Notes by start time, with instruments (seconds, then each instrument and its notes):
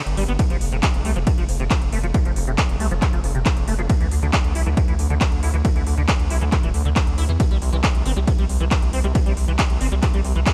0.06 analog synth bass G1, closed hi-hat
0.17 analog synth bass G1, acid bass G3, open hi-hat
0.28 analog synth bass G1, acid bass B3
0.39 acid bass A2, kick, closed hi-hat, ride
0.50 analog synth bass F1, acid bass F3, closed hi-hat
0.61 analog synth bass F1, open hi-hat
0.72 analog synth bass F1, acid bass C3, closed hi-hat
0.83 kick, clap, closed hi-hat, ride
0.94 analog synth bass F1, closed hi-hat
1.05 analog synth bass C2, acid bass A3, open hi-hat
1.16 analog synth bass F1, acid bass F3, closed hi-hat
1.27 acid bass A2, kick, closed hi-hat, ride
1.38 analog synth bass F1, acid bass F3, closed hi-hat
1.49 analog synth bass F1, open hi-hat
1.60 analog synth bass F1, acid bass C3, closed hi-hat
1.71 kick, clap, closed hi-hat, ride
1.81 analog synth bass F1, closed hi-hat
1.92 analog synth bass F1, acid bass A3, open hi-hat
2.03 analog synth bass F1, acid bass F3, closed hi-hat
2.14 acid bass A2, kick, closed hi-hat, ride
2.25 analog synth bass F1, acid bass F3, closed hi-hat
2.36 analog synth bass F1, open hi-hat
2.47 analog synth bass F1, acid bass C3, closed hi-hat
2.58 kick, clap, closed hi-hat, ride
2.69 analog synth bass F1, closed hi-hat
2.80 analog synth bass C2, acid bass A3, open hi-hat
2.91 analog synth bass F1, acid bass F3, closed hi-hat
3.02 acid bass A2, kick, clap, closed hi-hat, ride
3.13 analog synth bass F1, acid bass F3, closed hi-hat
3.24 analog synth bass F1, open hi-hat
3.35 analog synth bass F1, acid bass C3, closed hi-hat
3.46 kick, clap, closed hi-hat, ride
3.57 analog synth bass F1, closed hi-hat
3.68 analog synth bass F1, acid bass A3, open hi-hat
3.79 analog synth bass F1, acid bass F3, closed hi-hat
3.90 acid bass A2, kick, closed hi-hat, ride
4.00 analog synth bass D2, acid bass E3, closed hi-hat
4.11 analog synth bass D2, open hi-hat
4.22 analog synth bass D2, acid bass D3, closed hi-hat
4.33 kick, clap, closed hi-hat, ride
4.44 analog synth bass D2, closed hi-hat
4.55 analog synth bass C2, acid bass E4, open hi-hat
4.66 analog synth bass D2, acid bass E3, closed hi-hat
4.77 acid bass A2, kick, closed hi-hat, ride
4.88 analog synth bass D2, acid bass E3, closed hi-hat
4.99 analog synth bass D2, open hi-hat
5.10 analog synth bass D2, acid bass D3, closed hi-hat
5.21 kick, clap, closed hi-hat, ride
5.32 analog synth bass D2, closed hi-hat
5.43 analog synth bass D2, acid bass E4, open hi-hat
5.54 analog synth bass D2, acid bass E3, closed hi-hat
5.65 acid bass A2, kick, closed hi-hat, ride
5.76 analog synth bass D2, acid bass E3, closed hi-hat
5.87 analog synth bass D2, open hi-hat
5.97 analog synth bass D2, acid bass D3, closed hi-hat
6.08 kick, clap, closed hi-hat, ride
6.19 analog synth bass D2, closed hi-hat
6.30 analog synth bass C2, acid bass E4, open hi-hat
6.41 analog synth bass D2, acid bass E3, closed hi-hat
6.52 acid bass A2, kick, clap, closed hi-hat, ride
6.63 analog synth bass D1, acid bass E3, closed hi-hat
6.74 analog synth bass D2, open hi-hat
6.85 analog synth bass D2, acid bass D3, closed hi-hat
6.96 kick, clap, closed hi-hat, ride
7.07 analog synth bass D2, closed hi-hat
7.18 analog synth bass D2, acid bass E4, open hi-hat
7.29 analog synth bass E2, acid bass E3, closed hi-hat
7.40 acid bass C3, kick, closed hi-hat, ride
7.51 analog synth bass C2, acid bass G3, closed hi-hat
7.62 analog synth bass C2, open hi-hat
7.73 analog synth bass C2, acid bass E3, closed hi-hat
7.84 kick, clap, closed hi-hat, ride
7.95 analog synth bass C2, closed hi-hat
8.06 analog synth bass G1, acid bass C4, open hi-hat
8.17 analog synth bass C2, acid bass G3, closed hi-hat
8.27 acid bass C3, kick, closed hi-hat, ride
8.38 analog synth bass C2, acid bass G3, closed hi-hat
8.49 analog synth bass C2, open hi-hat
8.60 analog synth bass C2, acid bass E3, closed hi-hat
8.71 kick, clap, closed hi-hat, ride
8.82 analog synth bass C2, closed hi-hat
8.93 analog synth bass C2, acid bass C4, open hi-hat
9.04 analog synth bass C2, acid bass G3, closed hi-hat
9.15 acid bass C3, kick, closed hi-hat, ride
9.26 analog synth bass C2, acid bass G3, closed hi-hat
9.37 analog synth bass C2, open hi-hat
9.48 analog synth bass C2, acid bass E3, closed hi-hat
9.59 kick, clap, closed hi-hat, ride
9.70 analog synth bass C2, closed hi-hat
9.81 analog synth bass G1, acid bass C4, open hi-hat
9.92 analog synth bass C2, acid bass G3
10.03 acid bass C3, kick, clap, closed hi-hat, ride
10.14 analog synth bass C2, acid bass G3, closed hi-hat
10.24 analog synth bass C2, open hi-hat
10.36 analog synth bass C2, acid bass E3
10.46 kick, clap, closed hi-hat, ride